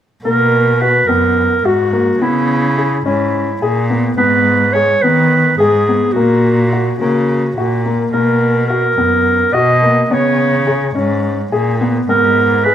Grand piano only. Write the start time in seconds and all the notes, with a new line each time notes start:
0.25 A#3
0.81 F#4
1.09 B3
1.65 F#4
1.93 A#3
2.22 B3
2.77 G#4
3.06 C#4
3.62 G#4
3.90 B3
4.18 B3
4.75 G#4
5.04 B3
5.60 G#4
5.89 B3
6.16 A#3
6.73 F#4
7.01 A#3
7.58 F#4
7.86 A#3
8.14 A#3
8.70 F#4
8.98 B3
9.54 F#4
9.82 A#3
10.11 B3
10.67 G#4
10.95 C#4
11.52 G#4
11.81 B3
12.09 B3
12.66 G#4